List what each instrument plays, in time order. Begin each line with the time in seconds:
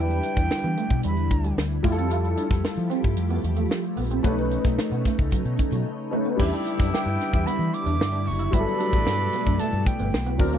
Already playing: fingered electric bass E2, string machine D3 G3 E4, grand piano G3 D4 E4 B4
0.00 flute G5
0.10 closed hi-hat
0.23 muted clean electric guitar stroke, closed hi-hat
0.37 fingered electric bass E2, clean electric guitar D4, kick, closed hi-hat
0.50 muted fingered electric bass stroke, muted clean electric guitar stroke, snare
0.64 fingered electric bass E3, clean electric guitar B3
0.77 clean electric guitar A3, closed hi-hat
0.90 fingered electric bass B2, kick, closed hi-hat
1.03 fingered electric bass E2, clean electric guitar G3, flute B5, closed hi-hat
1.17 closed hi-hat
1.31 fingered electric bass D2, muted clean electric guitar stroke, kick, closed hi-hat
1.44 clean electric guitar G3, closed hi-hat
1.57 fingered electric bass D2, muted clean electric guitar stroke, snare
1.83 fingered electric bass F2, string machine F3 A3 G4, grand piano G3 E4 F4 G4, clean electric guitar A3, kick, open hi-hat
1.92 grand piano A4
1.98 clean electric guitar C4, closed hi-hat
2.10 clean electric guitar F4, closed hi-hat
2.24 muted clean electric guitar stroke, closed hi-hat
2.37 clean electric guitar D4, closed hi-hat
2.51 fingered electric bass F2, kick, snare, closed hi-hat
2.64 muted fingered electric bass stroke, snare
2.77 fingered electric bass F3, closed hi-hat
2.90 clean electric guitar C4, closed hi-hat
3.04 fingered electric bass G2, kick, closed hi-hat
3.17 fingered electric bass F2, closed hi-hat
3.30 clean electric guitar B3, closed hi-hat
3.44 fingered electric bass E2, muted clean electric guitar stroke, closed hi-hat
3.56 clean electric guitar A3, closed hi-hat
3.70 muted clean electric guitar stroke, snare
3.84 closed hi-hat
3.97 fingered electric bass A#1, clean electric guitar B3, open hi-hat
4.11 clean electric guitar C4, closed hi-hat
4.23 fingered electric bass B1, string machine C#3 D#4, grand piano A3 C#4 D4 B4, clean electric guitar B3, kick, closed hi-hat
4.31 grand piano D#4
4.38 closed hi-hat
4.51 muted clean electric guitar stroke, closed hi-hat
4.64 fingered electric bass B1, clean electric guitar A3, kick, snare, closed hi-hat
4.78 muted fingered electric bass stroke, muted clean electric guitar stroke, snare
4.92 fingered electric bass B2, clean electric guitar B3, closed hi-hat
5.05 clean electric guitar A3, kick, snare, closed hi-hat
5.19 fingered electric bass C#2, kick, closed hi-hat
5.32 clean electric guitar F#3, kick, closed hi-hat
5.45 fingered electric bass B2, closed hi-hat
5.59 muted clean electric guitar stroke, kick, closed hi-hat
5.72 fingered electric bass B2, clean electric guitar F#3, closed hi-hat
5.86 muted clean electric guitar stroke
6.11 grand piano A3 C#4 D#4 B4, clean electric guitar A3
6.26 clean electric guitar B3
6.36 fingered electric bass E2, string machine D3 G3 E4, grand piano G3 D4 E4 G4, horn section B3 E4 E5, clean electric guitar E4, kick, crash
6.40 horn section G4
6.67 muted clean electric guitar stroke, closed hi-hat
6.80 fingered electric bass F#2, clean electric guitar D4, kick, snare, closed hi-hat
6.93 clean electric guitar G4, flute G5, snare
7.06 fingered electric bass G2, muted clean electric guitar stroke, closed hi-hat
7.21 snare, closed hi-hat
7.33 fingered electric bass E2, clean electric guitar E4, kick, closed hi-hat
7.45 clean electric guitar B3, flute B5, muted fingered electric bass stroke, closed hi-hat
7.59 fingered electric bass E3, closed hi-hat
7.74 flute D6, muted clean electric guitar stroke, closed hi-hat
7.86 fingered electric bass E2, clean electric guitar D4, closed hi-hat
7.99 fingered electric bass G2, snare
8.12 clean electric guitar D4, closed hi-hat
8.26 fingered electric bass F#1, flute C#6, muted clean electric guitar stroke, open hi-hat
8.39 clean electric guitar E4, closed hi-hat
8.51 fingered electric bass G1, string machine B2 A3, grand piano F#3 G3 B3 G4, horn section B3 D4 A4 D5, clean electric guitar E4, flute B5, kick, closed hi-hat
8.59 grand piano A4
8.68 closed hi-hat
8.80 clean electric guitar D4, closed hi-hat
8.93 fingered electric bass A1, muted clean electric guitar stroke, kick, closed hi-hat
9.06 fingered electric bass G2, muted clean electric guitar stroke, snare
9.33 clean electric guitar B3, closed hi-hat
9.46 fingered electric bass F#2, clean electric guitar D4, kick, closed hi-hat
9.59 clean electric guitar A3, flute A5, muted fingered electric bass stroke, closed hi-hat
9.72 fingered electric bass G2, closed hi-hat
9.86 flute G5, muted clean electric guitar stroke, kick, closed hi-hat
9.99 fingered electric bass G1, clean electric guitar B3, closed hi-hat
10.13 fingered electric bass B1, snare
10.26 clean electric guitar B3, closed hi-hat
10.38 fingered electric bass D2, grand piano F#3 C4 D4 A#4, horn section A#3 D4 F#4 D5, muted clean electric guitar stroke, kick, open hi-hat
10.53 clean electric guitar A#3, closed hi-hat